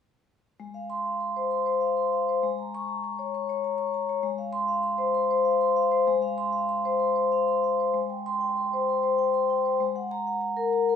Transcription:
0.60 2.40 G#3 soft
0.74 0.99 F5 soft
0.90 1.15 C6 soft
1.06 1.30 F5 soft
1.21 1.46 C6 soft
1.36 1.61 C5 soft
1.51 1.76 C6 soft
1.66 1.91 C5 soft
1.81 2.06 F5 soft
1.97 2.22 C6 soft
2.13 2.37 F5 soft
2.29 2.44 C5 soft
2.43 4.20 G#3 soft
2.58 2.83 A#5 soft
2.75 2.98 C#6 medium
2.88 3.13 A#5 soft
3.04 3.28 C#6 soft
3.19 3.43 C#5 soft
3.35 3.58 C#6 soft
3.49 3.73 C#5 soft
3.64 3.88 A#5 soft
3.78 4.03 C#6 soft
3.94 4.18 A#5 soft
4.09 4.24 C#5 soft
4.23 6.01 G#3 soft
4.38 4.63 F5 soft
4.53 4.78 C6 medium
4.68 4.93 F5 soft
4.83 5.08 C6 soft
4.98 5.23 C5 soft
5.14 5.39 C6 soft
5.31 5.54 C5 soft
5.45 5.69 F5 soft
5.61 5.85 C6 soft
5.76 6.00 F5 soft
5.91 6.16 C5 soft
6.08 7.91 G#3 medium
6.22 6.46 F5 soft
6.38 6.62 C6 soft
6.53 6.77 F5 soft
6.69 6.93 C6 soft
6.85 7.09 C5 soft
7.00 7.24 C6 soft
7.16 7.40 C5 soft
7.32 7.57 F5 soft
7.48 7.73 C6 soft
7.64 7.89 F5 soft
7.80 7.95 C5 soft
7.94 9.76 G#3 soft
8.10 8.35 G5 soft
8.26 8.51 C6 medium
8.41 8.66 G5 soft
8.57 8.82 C6 soft
8.73 8.97 C5 soft
8.89 9.13 C6 soft
9.03 9.28 C5 soft
9.19 9.43 G5 soft
9.34 9.59 C6 soft
9.50 9.74 G5 soft
9.65 9.80 C5 soft
9.80 10.96 G#3 soft
9.96 10.20 F#5 soft
10.11 10.36 A#5 medium
10.27 10.52 F#5 soft
10.41 10.66 A#5 soft
10.57 10.82 A#4 soft
10.73 10.96 A#5 soft
10.89 10.96 A#4 soft

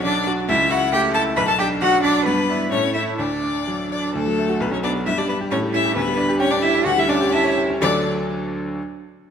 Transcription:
0.00 0.47 B1 loud
0.00 0.18 F#4 medium
0.00 0.26 D5 loud
0.05 0.40 F#3 medium
0.05 0.27 D4 loud
0.27 0.49 F#4 medium
0.48 1.34 C#2 loud
0.48 0.69 E4 loud
0.48 0.72 E5 loud
0.70 1.06 E4 medium
0.70 0.78 F#4 loud
0.70 0.92 F#5 loud
0.92 1.28 A3 medium
0.92 1.13 G4 loud
0.92 1.01 G5 loud
1.14 1.37 E4 medium
1.14 1.22 A4 loud
1.14 1.22 A5 loud
1.36 2.24 B1 loud
1.36 1.41 B4 loud
1.36 1.48 B5 loud
1.48 1.52 A4 loud
1.48 1.59 A5 loud
1.59 1.95 D4 medium
1.59 1.67 G4 loud
1.59 1.67 G5 loud
1.81 2.18 F#3 loud
1.81 2.03 F#4 loud
1.81 2.02 F#5 loud
2.03 2.27 D4 loud
2.03 2.27 D4 medium
2.03 2.24 D5 loud
2.25 2.71 G2 loud
2.25 2.73 B3 loud
2.25 2.70 B4 loud
2.49 2.70 D4 medium
2.49 2.70 E4 medium
2.71 3.18 A2 loud
2.71 2.94 C#4 loud
2.71 2.93 C#5 loud
2.94 3.17 A3 medium
2.94 3.17 E4 loud
2.94 3.17 E4 medium
2.94 3.02 E5 loud
3.18 4.12 D2 medium
3.18 3.90 D4 medium
3.18 3.90 D5 loud
3.44 3.83 D4 medium
3.67 4.06 F#3 medium
3.91 4.15 D4 medium
3.91 4.14 D5 loud
4.14 4.59 D2 medium
4.14 4.62 A3 medium
4.14 4.62 A4 loud
4.26 4.45 F#3 medium
4.38 4.57 A3 medium
4.49 4.61 F#4 medium
4.60 5.05 B1 loud
4.60 4.73 B3 loud
4.60 4.72 B4 medium
4.71 4.90 F#3 medium
4.71 4.82 C#4 medium
4.71 4.77 C#5 loud
4.83 5.02 B3 medium
4.83 4.91 D4 loud
4.83 4.91 D5 loud
4.95 5.07 F#4 medium
5.05 5.50 G2 medium
5.05 5.16 E4 medium
5.05 5.19 E5 loud
5.16 5.36 G3 medium
5.16 5.27 D4 loud
5.16 5.28 D5 loud
5.27 5.35 B3 medium
5.27 5.47 D4 medium
5.27 5.37 B4 loud
5.41 5.52 G4 medium
5.51 5.95 A2 loud
5.51 5.59 C#4 loud
5.51 5.59 C#5 loud
5.63 5.81 G3 medium
5.73 5.92 C#4 medium
5.73 5.97 E4 loud
5.73 5.95 E5 loud
5.85 5.96 G4 medium
5.95 6.83 D2 medium
5.95 6.39 B3 loud
5.95 6.40 B4 loud
6.07 6.25 G3 medium
6.17 6.36 D4 medium
6.29 6.47 G4 medium
6.40 6.44 C#4 loud
6.40 6.53 C#5 loud
6.40 6.58 G5 loud
6.51 6.55 D4 loud
6.51 6.64 D5 loud
6.51 6.70 D5 medium
6.62 6.87 E4 loud
6.62 6.81 G4 medium
6.62 6.85 E5 loud
6.74 6.86 D4 medium
6.85 7.79 D2 loud
6.85 6.96 F#4 loud
6.85 7.00 F#5 loud
6.97 7.16 G3 medium
6.97 7.08 E4 loud
6.97 7.11 E5 loud
7.09 7.28 C#4 medium
7.09 7.17 D4 loud
7.09 7.35 D5 loud
7.21 7.40 G4 loud
7.32 7.57 E4 loud
7.32 7.58 E5 loud
7.32 7.52 A5 medium
7.44 7.65 C#5 medium
7.57 7.77 G4 medium
7.70 7.82 C#4 medium
7.81 8.08 D2 loud
7.81 8.09 D3 medium
7.81 8.08 F#3 medium
7.81 8.08 D4 loud
7.81 8.09 D4 medium
7.81 8.08 A4 medium
7.81 8.08 D5 loud
7.81 8.09 D5 medium

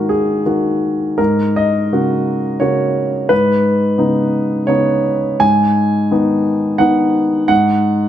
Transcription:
0.00 1.19 G#2 soft
0.00 0.42 D#3 soft
0.00 0.42 A#3 soft
0.00 0.42 F#4 soft
0.00 1.18 A#4 medium
0.09 1.18 G#4 soft
0.46 1.15 D#3 soft
0.46 1.15 A#3 soft
0.46 1.15 F#4 soft
1.18 1.91 G#2 soft
1.18 1.56 A#4 medium
1.56 2.61 D#5 medium
1.92 2.58 C#3 soft
1.92 2.58 A#3 soft
1.92 2.58 F#4 soft
2.60 3.26 C#3 soft
2.60 3.26 A#3 soft
2.60 3.26 F#4 soft
2.60 3.30 C#5 medium
3.29 3.97 G#2 soft
3.29 4.68 B4 medium
3.98 4.64 C#3 soft
3.98 4.64 B3 soft
3.98 4.64 D#4 soft
4.67 5.37 C#3 soft
4.67 5.37 B3 soft
4.67 5.37 D#4 soft
4.67 5.41 C#5 medium
5.40 6.09 G#2 soft
5.40 6.80 G#5 medium
6.11 6.76 D#3 soft
6.11 6.77 B3 soft
6.11 6.77 D#4 soft
6.78 7.45 D#3 soft
6.78 7.46 B3 soft
6.78 7.46 D#4 soft
6.78 7.47 F#5 medium
7.48 8.09 G#2 soft
7.48 8.09 F#5 medium

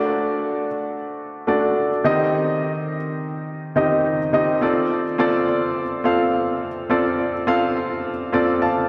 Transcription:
0.00 0.67 A3 medium
0.00 0.67 D4 medium
0.00 0.68 F#4 medium
0.00 0.68 D5 medium
1.47 1.89 A3 medium
1.47 1.90 D4 medium
1.47 1.90 F#4 medium
1.47 1.90 D5 medium
2.04 2.96 D#3 medium
2.04 2.96 C4 medium
2.04 2.96 D#4 medium
2.04 2.96 G4 medium
2.04 2.96 D#5 medium
3.76 4.18 D#3 medium
3.76 4.18 C4 medium
3.76 4.18 D#4 medium
3.76 4.18 G4 medium
3.76 4.18 D#5 medium
4.33 4.54 D#3 medium
4.33 4.54 C4 medium
4.33 4.54 D#4 medium
4.33 4.54 G4 medium
4.33 4.55 D#5 medium
4.61 5.04 C4 medium
4.61 5.04 F4 medium
4.61 5.04 A4 medium
4.61 5.04 D5 medium
5.18 5.82 C4 medium
5.18 5.82 F4 medium
5.18 5.82 A4 medium
5.18 5.82 D5 medium
6.04 6.67 C4 medium
6.04 6.68 F4 medium
6.04 6.68 A4 medium
6.04 6.68 F5 medium
6.90 7.32 C4 medium
6.90 7.32 F4 medium
6.90 7.32 A4 medium
6.90 7.33 D5 medium
7.47 8.10 C4 medium
7.47 8.10 F4 medium
7.47 8.11 A4 medium
7.47 8.11 F5 medium
8.33 8.89 C4 medium
8.33 8.89 F4 medium
8.33 8.89 A4 medium
8.33 8.89 D5 medium
8.62 8.89 F5 medium
8.62 8.89 A5 medium

